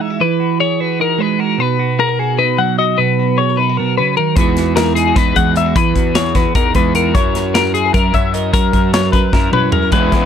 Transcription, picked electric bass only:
4.37 5.12 E2 loud
5.16 5.35 E2 loud
5.35 5.73 E2 medium
5.76 5.94 E2 loud
5.95 6.33 E2 medium
6.35 6.44 E2 medium
6.55 6.74 E2 medium
6.75 7.12 E2 medium
7.15 7.90 F#2 loud
7.94 8.13 F#2 loud
8.14 8.51 F#2 medium
8.54 8.72 F#2 medium
8.73 9.10 F#2 medium
9.13 9.22 F#2 medium
9.33 9.51 F#2 loud
9.52 9.89 F#2 medium
9.92 10.11 E2 medium
10.12 10.25 E2 medium

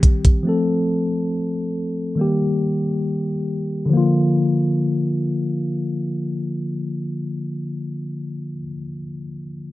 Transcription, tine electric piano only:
0.00 0.41 D#3 medium
0.00 0.42 G3 medium
0.00 0.43 C4 medium
0.00 0.44 G4 medium
0.43 2.14 F3 medium
0.43 2.15 A3 medium
0.43 2.16 C4 medium
0.49 2.17 A4 medium
2.15 3.86 D#3 medium
2.15 3.87 G3 medium
2.15 3.88 A#3 medium
2.21 3.89 G4 medium
3.86 8.53 D3 medium
3.86 8.56 F3 medium
3.93 8.60 A#3 medium
3.93 8.64 F4 medium

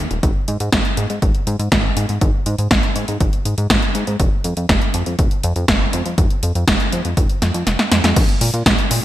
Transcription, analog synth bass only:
0.11 0.20 D#1 medium
0.23 0.32 G#1 loud
0.48 0.57 G#2 medium
0.60 0.70 G#2 medium
0.73 0.82 G#1 loud
0.97 1.07 G#2 medium
1.10 1.19 G#2 medium
1.22 1.32 G#1 medium
1.47 1.56 G#2 medium
1.59 1.69 G#2 medium
1.72 1.91 G#1 medium
1.97 2.06 G#2 medium
2.09 2.18 G#2 medium
2.21 2.31 G#1 loud
2.46 2.55 G#2 medium
2.58 2.68 G#2 medium
2.71 2.80 G#1 loud
2.96 3.05 G#2 medium
3.08 3.18 G#2 medium
3.21 3.30 G#1 loud
3.45 3.55 G#2 medium
3.58 3.67 G#2 medium
3.70 3.79 G#1 loud
3.95 4.04 G#2 medium
4.07 4.17 G#2 medium
4.20 4.29 F1 loud
4.44 4.54 F2 medium
4.57 4.66 F2 medium
4.69 4.79 F1 loud
4.94 5.03 F2 medium
5.07 5.16 F2 medium
5.19 5.28 F1 medium
5.44 5.53 F2 loud
5.56 5.65 F2 medium
5.68 5.87 F1 medium
5.93 6.03 F2 medium
6.06 6.15 F2 medium
6.18 6.27 F1 loud
6.43 6.52 F2 medium
6.55 6.65 F2 medium
6.68 6.77 F1 medium
6.93 7.02 F2 medium
7.05 7.14 F2 medium
7.17 7.27 F1 loud
7.42 7.51 F2 medium
7.54 7.64 F2 loud
7.67 7.76 F1 medium
7.92 8.01 F2 medium
8.04 8.13 F2 medium
8.16 8.26 A#1 loud
8.41 8.51 A#2 medium
8.54 8.63 A#2 loud
8.66 8.75 A#1 loud
8.91 9.00 A#2 medium

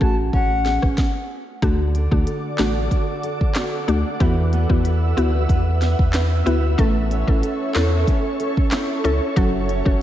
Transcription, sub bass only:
0.01 0.30 A1 medium
0.33 0.79 A1 medium
0.83 0.97 G#1 medium
1.62 2.08 D2 loud
2.12 2.26 D2 medium
2.59 2.88 A1 medium
3.88 4.04 D2 loud
4.20 4.66 E2 loud
4.70 5.13 E2 loud
5.17 5.47 D2 medium
5.49 5.95 E2 loud
5.99 6.42 E2 medium
6.46 6.76 D2 medium
6.79 7.24 A1 loud
7.28 7.42 A1 loud
7.75 8.05 E2 medium
9.04 9.20 C#2 medium
9.37 9.82 F#1 loud
9.86 10.02 F#1 loud

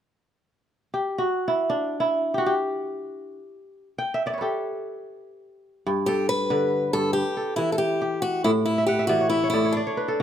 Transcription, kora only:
0.94 1.24 G4 medium
1.18 2.38 F#4 medium
1.48 2.00 E4 medium
1.70 3.38 D4 medium
2.00 3.57 E4 medium
2.34 2.52 F#4 medium
2.34 2.44 G4 medium
2.46 3.88 G4 medium
3.98 4.92 G5 medium
4.14 4.25 E5 medium
4.26 4.30 D5 medium
4.26 5.29 E5 soft
4.30 5.48 C#5 soft
4.30 5.41 D5 soft
4.38 5.73 A4 soft
4.38 5.61 B4 soft
4.42 5.83 G4 medium
5.86 6.92 G2 medium
6.08 6.93 A4 medium
6.50 7.20 D3 medium
6.50 7.73 B4 medium
6.93 7.20 G2 medium
6.93 7.36 A4 soft
7.37 8.69 A4 medium
7.58 8.50 E3 medium
8.02 8.94 G4 medium
8.45 9.53 A2 medium
8.78 8.99 E5 medium
8.88 9.85 F#5 medium
8.99 9.32 E5 medium
9.09 9.79 E3 medium
9.09 9.50 D5 medium
9.21 9.43 C#5 medium
9.32 10.23 E5 medium
9.44 9.64 C#5 medium
9.54 9.79 A2 medium
9.54 9.76 D5 medium
9.65 9.86 C#5 medium
9.77 10.23 D5 medium
9.87 10.23 C#5 medium
9.97 10.23 B4 medium
10.08 10.23 A4 medium

